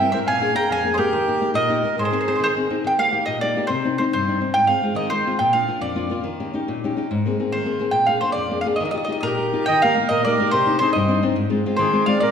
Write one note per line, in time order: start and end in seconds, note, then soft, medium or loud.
0.00 0.13 G2 medium
0.00 0.13 C4 soft
0.00 0.13 E4 soft
0.00 0.13 A#4 soft
0.00 0.12 E5 medium
0.00 0.11 G5 medium
0.12 0.25 C4 medium
0.12 0.25 E4 soft
0.12 0.26 A#4 soft
0.12 0.19 C5 medium
0.12 0.17 E5 medium
0.26 0.55 A#2 medium
0.26 0.54 F5 loud
0.26 0.55 G#5 loud
0.40 0.53 A#3 soft
0.40 0.53 D4 soft
0.40 0.54 G#4 soft
0.54 0.78 A#3 soft
0.54 0.78 D4 soft
0.54 0.79 G#4 soft
0.54 0.69 G5 medium
0.54 0.69 A#5 loud
0.69 0.98 F2 medium
0.69 0.90 F5 medium
0.69 0.94 G#5 loud
0.84 0.97 A#3 soft
0.84 0.97 D4 soft
0.84 0.98 G#4 medium
0.93 0.99 G#4 medium
0.93 0.97 C5 medium
0.98 1.10 A#3 medium
0.98 1.10 D4 soft
0.98 1.51 G4 medium
0.98 1.10 G#4 medium
0.98 1.51 A#4 medium
1.13 1.41 D#3 medium
1.28 1.40 A#3 soft
1.28 1.40 D#4 soft
1.28 1.41 G4 soft
1.41 1.64 A#3 soft
1.41 1.65 D#4 soft
1.41 1.65 G4 medium
1.54 1.83 A#2 medium
1.54 1.96 A#4 medium
1.54 1.95 D#5 loud
1.69 1.82 A#3 soft
1.69 1.83 D#4 soft
1.69 1.83 G4 soft
1.83 1.95 A#3 soft
1.83 1.96 D#4 soft
1.83 1.96 G4 medium
1.98 2.27 G#2 medium
1.98 2.54 G#4 medium
1.98 2.04 C5 medium
2.05 2.12 C5 medium
2.12 2.27 C4 soft
2.12 2.26 D#4 soft
2.12 2.27 G#4 medium
2.12 2.19 C5 medium
2.21 2.27 C5 medium
2.28 2.52 C4 soft
2.28 2.51 D#4 soft
2.28 2.52 G#4 soft
2.28 2.34 C5 medium
2.36 2.42 C5 soft
2.40 2.70 D#3 medium
2.40 2.46 C5 medium
2.46 2.52 C5 medium
2.56 2.69 C4 soft
2.56 2.69 D#4 soft
2.56 2.69 G#4 soft
2.70 2.82 C4 soft
2.70 2.82 D#4 soft
2.70 2.82 G#4 soft
2.84 3.13 D#3 medium
2.84 2.92 G5 medium
2.98 3.11 A#3 soft
2.98 3.11 D#4 soft
2.98 3.11 G4 soft
2.98 3.25 F5 medium
3.12 3.36 A#3 soft
3.12 3.36 D#4 soft
3.12 3.37 G4 soft
3.26 3.56 A#2 medium
3.26 3.41 D#5 medium
3.41 3.55 A#3 soft
3.41 3.56 D#4 soft
3.41 3.56 G4 soft
3.41 3.67 D5 medium
3.56 3.68 A#3 soft
3.56 3.68 D#4 soft
3.56 3.68 G4 medium
3.67 3.98 C3 medium
3.67 3.95 C5 medium
3.84 3.98 C4 soft
3.84 3.99 D4 soft
3.84 3.98 D#4 soft
3.98 4.22 C4 soft
3.98 4.22 D4 soft
3.98 4.22 D#4 soft
3.98 4.03 C5 medium
4.13 4.41 G2 medium
4.13 4.40 C5 medium
4.28 4.40 C4 soft
4.28 4.40 D4 soft
4.28 4.41 D#4 soft
4.41 4.52 C4 soft
4.41 4.52 D4 soft
4.41 4.53 D#4 soft
4.54 4.82 G#2 medium
4.54 4.67 G5 loud
4.67 4.82 G#3 soft
4.67 4.82 C4 soft
4.67 4.82 F4 soft
4.67 4.94 F5 medium
4.83 5.06 G#3 soft
4.83 5.06 C4 soft
4.83 5.06 F4 soft
4.95 5.24 D#3 medium
4.95 5.12 D#5 medium
5.10 5.26 G#3 soft
5.10 5.26 C4 soft
5.10 5.26 F4 soft
5.10 5.37 C5 medium
5.27 5.38 G#3 soft
5.27 5.38 C4 soft
5.27 5.38 F4 soft
5.39 5.68 A#2 medium
5.39 5.53 G5 medium
5.53 5.66 A#3 soft
5.53 5.67 D4 soft
5.53 5.67 F4 soft
5.53 5.80 F5 medium
5.67 5.91 A#3 soft
5.67 5.91 D4 soft
5.67 5.92 F4 soft
5.81 6.10 F2 medium
5.81 6.12 D5 medium
5.95 6.08 A#3 soft
5.95 6.09 D4 soft
5.95 6.10 F4 soft
6.10 6.22 A#3 soft
6.10 6.22 D4 soft
6.10 6.23 F4 medium
6.24 6.53 D#3 medium
6.40 6.52 C#4 soft
6.40 6.53 D#4 soft
6.40 6.53 G4 soft
6.54 6.77 C#4 soft
6.54 6.77 D#4 soft
6.54 6.78 G4 soft
6.68 6.96 A#2 medium
6.84 6.95 C#4 soft
6.84 6.96 D#4 soft
6.84 6.97 G4 soft
6.97 7.08 C#4 medium
6.97 7.08 D#4 soft
6.97 7.09 G4 medium
7.11 7.38 G#2 medium
7.26 7.38 A#3 soft
7.26 7.38 C4 soft
7.26 7.39 G#4 soft
7.40 7.62 A#3 soft
7.40 7.62 C4 soft
7.40 7.63 G#4 soft
7.52 7.80 D#3 medium
7.52 7.92 C5 medium
7.65 7.78 A#3 soft
7.65 7.79 C4 soft
7.65 7.79 G#4 soft
7.80 7.91 A#3 medium
7.80 7.92 C4 soft
7.80 7.92 G#4 soft
7.91 8.21 A#2 medium
7.91 8.08 G5 medium
8.06 8.21 A#3 soft
8.06 8.22 D4 soft
8.06 8.23 G#4 medium
8.06 8.20 F5 medium
8.21 8.46 A#3 soft
8.21 8.46 D4 soft
8.21 8.47 G#4 soft
8.21 8.32 C5 medium
8.32 8.64 F2 medium
8.32 8.61 D5 medium
8.50 8.64 A#3 soft
8.50 8.65 D4 soft
8.50 8.65 G#4 soft
8.61 8.66 F5 medium
8.65 8.77 A#3 soft
8.65 8.77 D4 soft
8.65 8.77 G#4 medium
8.76 8.84 D#5 medium
8.80 8.93 D#3 medium
8.85 8.90 D#5 medium
8.91 9.07 D#4 soft
8.91 9.07 F4 soft
8.91 9.08 G4 soft
8.91 8.96 D#5 medium
8.97 9.03 D#5 soft
9.05 9.32 D#4 soft
9.05 9.11 D#5 medium
9.09 9.32 F4 soft
9.09 9.33 G4 soft
9.09 9.19 D#5 medium
9.21 9.52 A#2 medium
9.21 9.64 A#4 medium
9.21 9.30 D#5 medium
9.26 9.65 G4 medium
9.38 9.52 D#4 soft
9.38 9.52 F4 soft
9.38 9.53 G4 soft
9.53 9.64 D#4 soft
9.53 9.64 F4 soft
9.53 9.65 G4 medium
9.66 9.96 D#3 medium
9.66 9.81 D#5 loud
9.66 9.82 G5 loud
9.82 9.95 A#3 medium
9.82 9.96 D#4 soft
9.82 9.96 G4 medium
9.82 10.08 A#4 medium
9.82 10.08 F5 loud
9.97 10.19 A#3 soft
9.97 10.20 D#4 soft
9.97 10.20 G4 soft
10.09 10.37 A#2 medium
10.09 10.24 A#4 medium
10.09 10.23 D#5 loud
10.25 10.39 A#3 soft
10.25 10.40 D#4 soft
10.25 10.41 G4 soft
10.25 10.51 A#4 medium
10.25 10.51 D5 medium
10.40 10.50 A#3 medium
10.40 10.51 D#4 medium
10.40 10.51 G4 medium
10.51 10.80 C3 medium
10.51 10.78 G4 medium
10.51 10.78 C5 medium
10.65 10.80 C4 soft
10.65 10.80 D4 soft
10.65 10.81 D#4 medium
10.79 11.03 C4 soft
10.79 11.03 D4 soft
10.79 11.04 D#4 medium
10.79 10.93 G#4 medium
10.79 10.92 C5 medium
10.93 11.22 G2 medium
10.93 11.24 C5 medium
10.93 11.23 D#5 medium
11.08 11.22 C4 medium
11.08 11.21 D4 soft
11.08 11.22 D#4 soft
11.22 11.33 C4 medium
11.22 11.33 D4 medium
11.22 11.34 D#4 medium
11.36 11.64 G#2 medium
11.50 11.65 G#3 soft
11.50 11.66 C4 soft
11.50 11.65 F4 medium
11.66 11.88 G#3 soft
11.66 11.89 C4 soft
11.66 11.89 F4 medium
11.77 12.06 D#3 medium
11.77 12.06 G#4 medium
11.77 12.04 C5 medium
11.92 12.06 G#3 soft
11.92 12.06 C4 soft
11.92 12.06 F4 medium
12.06 12.18 G#3 soft
12.06 12.18 C4 soft
12.06 12.18 F4 soft
12.06 12.21 D5 medium
12.06 12.20 F5 medium
12.20 12.31 A#2 medium
12.20 12.31 A#4 medium
12.20 12.31 D5 medium